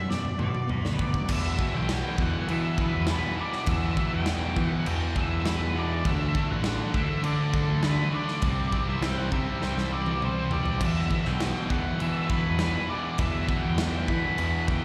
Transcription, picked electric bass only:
0, 0, Header, 1, 2, 480
1, 0, Start_track
1, 0, Key_signature, 1, "minor"
1, 0, Tempo, 595238
1, 1045, Time_signature, 4, 2, 24, 8
1, 11973, End_track
2, 0, Start_track
2, 0, Title_t, "Picked electric bass"
2, 0, Program_c, 0, 34
2, 0, Note_on_c, 0, 42, 90
2, 191, Note_off_c, 0, 42, 0
2, 320, Note_on_c, 0, 47, 90
2, 546, Note_off_c, 0, 47, 0
2, 687, Note_on_c, 0, 38, 88
2, 910, Note_off_c, 0, 38, 0
2, 1043, Note_on_c, 0, 40, 91
2, 1267, Note_off_c, 0, 40, 0
2, 1409, Note_on_c, 0, 35, 84
2, 1630, Note_off_c, 0, 35, 0
2, 1761, Note_on_c, 0, 40, 84
2, 1874, Note_off_c, 0, 40, 0
2, 2013, Note_on_c, 0, 52, 89
2, 2343, Note_off_c, 0, 52, 0
2, 2373, Note_on_c, 0, 40, 93
2, 2591, Note_off_c, 0, 40, 0
2, 2961, Note_on_c, 0, 40, 93
2, 3184, Note_off_c, 0, 40, 0
2, 3332, Note_on_c, 0, 40, 78
2, 3662, Note_off_c, 0, 40, 0
2, 3680, Note_on_c, 0, 52, 82
2, 3792, Note_off_c, 0, 52, 0
2, 3928, Note_on_c, 0, 40, 103
2, 4852, Note_off_c, 0, 40, 0
2, 4879, Note_on_c, 0, 38, 96
2, 5103, Note_off_c, 0, 38, 0
2, 5250, Note_on_c, 0, 33, 91
2, 5469, Note_off_c, 0, 33, 0
2, 5598, Note_on_c, 0, 38, 87
2, 5711, Note_off_c, 0, 38, 0
2, 5844, Note_on_c, 0, 50, 93
2, 6178, Note_off_c, 0, 50, 0
2, 6206, Note_on_c, 0, 38, 88
2, 6427, Note_off_c, 0, 38, 0
2, 6792, Note_on_c, 0, 36, 91
2, 7020, Note_off_c, 0, 36, 0
2, 7159, Note_on_c, 0, 36, 75
2, 7495, Note_off_c, 0, 36, 0
2, 7514, Note_on_c, 0, 48, 86
2, 7629, Note_off_c, 0, 48, 0
2, 7759, Note_on_c, 0, 36, 91
2, 8689, Note_off_c, 0, 36, 0
2, 8717, Note_on_c, 0, 40, 98
2, 8943, Note_off_c, 0, 40, 0
2, 9081, Note_on_c, 0, 35, 84
2, 9305, Note_off_c, 0, 35, 0
2, 9439, Note_on_c, 0, 40, 89
2, 9553, Note_off_c, 0, 40, 0
2, 9689, Note_on_c, 0, 52, 88
2, 10022, Note_off_c, 0, 52, 0
2, 10051, Note_on_c, 0, 40, 87
2, 10271, Note_off_c, 0, 40, 0
2, 10634, Note_on_c, 0, 40, 97
2, 10862, Note_off_c, 0, 40, 0
2, 11011, Note_on_c, 0, 40, 89
2, 11344, Note_off_c, 0, 40, 0
2, 11355, Note_on_c, 0, 52, 87
2, 11471, Note_off_c, 0, 52, 0
2, 11603, Note_on_c, 0, 40, 94
2, 11973, Note_off_c, 0, 40, 0
2, 11973, End_track
0, 0, End_of_file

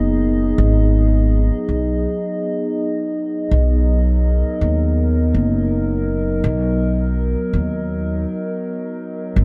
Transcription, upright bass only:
0, 0, Header, 1, 2, 480
1, 0, Start_track
1, 0, Key_signature, 5, "minor"
1, 0, Tempo, 731707
1, 382, Time_signature, 4, 2, 24, 8
1, 6197, End_track
2, 0, Start_track
2, 0, Title_t, "Upright bass"
2, 0, Program_c, 0, 32
2, 0, Note_on_c, 0, 30, 83
2, 364, Note_off_c, 0, 30, 0
2, 382, Note_on_c, 0, 32, 95
2, 976, Note_off_c, 0, 32, 0
2, 1105, Note_on_c, 0, 35, 81
2, 1344, Note_off_c, 0, 35, 0
2, 2305, Note_on_c, 0, 35, 94
2, 2897, Note_off_c, 0, 35, 0
2, 3026, Note_on_c, 0, 39, 83
2, 3485, Note_off_c, 0, 39, 0
2, 3505, Note_on_c, 0, 30, 82
2, 4205, Note_off_c, 0, 30, 0
2, 4223, Note_on_c, 0, 35, 95
2, 4816, Note_off_c, 0, 35, 0
2, 4942, Note_on_c, 0, 39, 81
2, 5403, Note_off_c, 0, 39, 0
2, 6142, Note_on_c, 0, 32, 96
2, 6197, Note_off_c, 0, 32, 0
2, 6197, End_track
0, 0, End_of_file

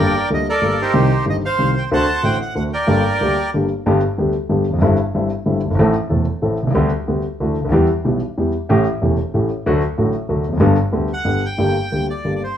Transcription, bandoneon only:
0, 0, Header, 1, 2, 480
1, 0, Start_track
1, 0, Key_signature, -2, "minor"
1, 0, Tempo, 323102
1, 1420, Time_signature, 3, 2, 24, 8
1, 5740, Key_signature, 1, "major"
1, 18680, End_track
2, 0, Start_track
2, 0, Title_t, "Bandoneon"
2, 0, Program_c, 0, 23
2, 0, Note_on_c, 0, 70, 60
2, 0, Note_on_c, 0, 74, 63
2, 0, Note_on_c, 0, 79, 87
2, 431, Note_off_c, 0, 79, 0
2, 436, Note_off_c, 0, 70, 0
2, 436, Note_off_c, 0, 74, 0
2, 503, Note_on_c, 0, 75, 75
2, 707, Note_off_c, 0, 75, 0
2, 732, Note_on_c, 0, 70, 62
2, 732, Note_on_c, 0, 74, 84
2, 743, Note_on_c, 0, 69, 61
2, 1210, Note_off_c, 0, 74, 0
2, 1211, Note_on_c, 0, 63, 59
2, 1213, Note_on_c, 0, 67, 60
2, 1214, Note_on_c, 0, 72, 80
2, 1385, Note_off_c, 0, 70, 0
2, 1391, Note_off_c, 0, 69, 0
2, 1862, Note_off_c, 0, 63, 0
2, 1863, Note_off_c, 0, 67, 0
2, 1864, Note_off_c, 0, 72, 0
2, 1925, Note_on_c, 0, 75, 81
2, 2026, Note_off_c, 0, 75, 0
2, 2159, Note_on_c, 0, 77, 94
2, 2168, Note_on_c, 0, 72, 70
2, 2590, Note_off_c, 0, 77, 0
2, 2638, Note_on_c, 0, 79, 79
2, 2739, Note_off_c, 0, 79, 0
2, 2817, Note_off_c, 0, 72, 0
2, 2868, Note_on_c, 0, 81, 99
2, 2869, Note_on_c, 0, 78, 67
2, 2880, Note_on_c, 0, 72, 75
2, 3304, Note_off_c, 0, 81, 0
2, 3339, Note_on_c, 0, 79, 93
2, 3527, Note_off_c, 0, 78, 0
2, 3533, Note_off_c, 0, 72, 0
2, 3556, Note_off_c, 0, 79, 0
2, 3593, Note_on_c, 0, 78, 87
2, 3780, Note_off_c, 0, 78, 0
2, 3802, Note_on_c, 0, 78, 89
2, 3911, Note_off_c, 0, 78, 0
2, 4056, Note_on_c, 0, 79, 86
2, 4062, Note_on_c, 0, 70, 60
2, 4074, Note_on_c, 0, 74, 62
2, 5199, Note_off_c, 0, 79, 0
2, 5202, Note_off_c, 0, 70, 0
2, 5208, Note_off_c, 0, 74, 0
2, 16537, Note_on_c, 0, 78, 88
2, 17021, Note_on_c, 0, 79, 87
2, 17025, Note_off_c, 0, 78, 0
2, 17926, Note_off_c, 0, 79, 0
2, 17974, Note_on_c, 0, 74, 64
2, 18333, Note_off_c, 0, 74, 0
2, 18355, Note_on_c, 0, 74, 49
2, 18460, Note_off_c, 0, 74, 0
2, 18476, Note_on_c, 0, 72, 72
2, 18680, Note_off_c, 0, 72, 0
2, 18680, End_track
0, 0, End_of_file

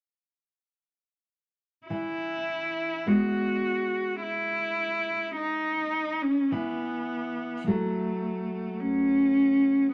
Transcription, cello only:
0, 0, Header, 1, 2, 480
1, 0, Start_track
1, 0, Key_signature, 4, "major"
1, 0, Tempo, 1200000
1, 750, Time_signature, 4, 2, 24, 8
1, 1226, Tempo, 1151631
1, 3146, Tempo, 1123596
1, 4115, End_track
2, 0, Start_track
2, 0, Title_t, "Cello"
2, 0, Program_c, 0, 42
2, 747, Note_on_c, 0, 64, 50
2, 1230, Note_on_c, 0, 66, 49
2, 1236, Note_off_c, 0, 64, 0
2, 1704, Note_off_c, 0, 66, 0
2, 1707, Note_on_c, 0, 64, 57
2, 2174, Note_off_c, 0, 64, 0
2, 2184, Note_on_c, 0, 63, 55
2, 2543, Note_on_c, 0, 61, 52
2, 2549, Note_off_c, 0, 63, 0
2, 2667, Note_on_c, 0, 59, 54
2, 2673, Note_off_c, 0, 61, 0
2, 3143, Note_on_c, 0, 57, 51
2, 3150, Note_off_c, 0, 59, 0
2, 3629, Note_on_c, 0, 61, 66
2, 3635, Note_off_c, 0, 57, 0
2, 4106, Note_off_c, 0, 61, 0
2, 4115, End_track
0, 0, End_of_file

